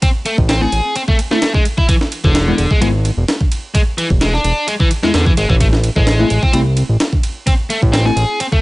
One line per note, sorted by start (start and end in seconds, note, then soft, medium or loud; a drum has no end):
0.02 0.08 C4 medium
0.02 kick loud
0.02 ride medium
0.26 0.35 A3 medium
0.26 ride medium
0.38 0.67 A1 loud
0.38 kick medium
0.49 0.61 C4 medium
0.49 snare loud
0.49 ride medium
0.61 0.68 A3 medium
0.61 0.68 C4 medium
0.61 0.68 E4 medium
0.61 0.95 G#4 loud
0.61 snare soft
0.72 0.81 A1 medium
0.72 ride medium
0.96 1.01 C4 medium
0.96 ride medium
1.08 1.16 A3 medium
1.08 kick medium
1.19 ride medium
1.31 1.38 A3 medium
1.31 1.53 A3 medium
1.31 1.38 C4 medium
1.31 1.38 E4 medium
1.31 snare medium
1.42 snare loud
1.42 ride medium
1.54 1.62 G#3 medium
1.54 kick medium
1.65 ride medium
1.78 1.86 E4 medium
1.78 kick medium
1.89 1.94 E3 medium
1.89 kick loud
1.89 ride medium
2.01 snare medium
2.12 ride medium
2.24 2.53 E1 loud
2.24 2.70 D3 medium
2.24 kick medium
2.35 snare loud
2.35 ride medium
2.48 2.55 G#3 medium
2.48 2.55 B3 medium
2.48 2.55 E4 medium
2.58 2.67 E1 medium
2.58 ride medium
2.71 2.80 G#3 medium
2.71 kick medium
2.81 3.11 G#1 medium
2.81 2.87 G#3 medium
2.81 2.90 G#3 medium
2.81 2.90 B3 medium
2.81 2.90 E4 loud
2.81 ride medium
3.05 ride medium
3.17 3.25 E1 loud
3.28 snare loud
3.28 ride medium
3.41 kick medium
3.52 ride medium
3.74 3.80 G#3 medium
3.74 kick loud
3.74 ride medium
3.98 4.07 E3 medium
3.98 ride medium
4.10 4.39 E1 loud
4.10 kick medium
4.21 4.33 G#3 medium
4.21 snare loud
4.21 ride medium
4.33 4.67 D4 loud
4.33 snare soft
4.44 4.53 E1 medium
4.44 ride medium
4.68 4.73 G#3 medium
4.68 ride medium
4.80 4.88 E3 medium
4.80 kick medium
4.91 ride medium
5.03 5.12 E2 soft
5.03 5.11 G#3 medium
5.03 5.10 G#3 medium
5.03 5.10 B3 medium
5.03 5.10 E4 medium
5.03 snare medium
5.14 5.31 E2 medium
5.14 5.26 D3 medium
5.14 snare loud
5.14 ride medium
5.26 5.31 E3 medium
5.26 kick medium
5.37 5.46 G#1 medium
5.37 5.47 G#3 medium
5.37 ride medium
5.50 5.90 A1 medium
5.50 5.55 E3 loud
5.50 kick medium
5.60 5.66 A3 medium
5.60 kick loud
5.60 ride medium
5.73 snare medium
5.84 ride medium
5.96 6.25 A1 loud
5.96 6.42 G#3 medium
5.96 kick medium
6.07 snare loud
6.07 ride medium
6.20 6.27 A3 medium
6.20 6.27 C4 medium
6.20 6.27 E4 medium
6.30 6.39 A1 medium
6.30 ride medium
6.43 6.52 C4 medium
6.43 kick medium
6.53 6.83 C2 medium
6.53 6.62 A3 medium
6.53 6.59 C4 medium
6.53 6.62 C4 medium
6.53 6.62 E4 loud
6.53 ride medium
6.77 ride medium
6.89 6.97 A1 loud
7.00 snare loud
7.00 ride medium
7.13 kick medium
7.23 ride medium
7.47 7.52 C4 medium
7.47 kick loud
7.47 ride medium
7.70 7.79 A3 medium
7.70 ride medium
7.82 8.11 A1 loud
7.82 kick medium
7.93 8.05 C4 medium
7.93 snare loud
7.93 ride medium
8.05 8.13 A3 medium
8.05 8.13 C4 medium
8.05 8.13 E4 medium
8.05 8.39 G#4 loud
8.05 snare soft
8.16 8.25 A1 medium
8.16 ride medium
8.40 8.45 C4 medium
8.40 ride medium
8.52 8.60 A3 medium
8.52 kick medium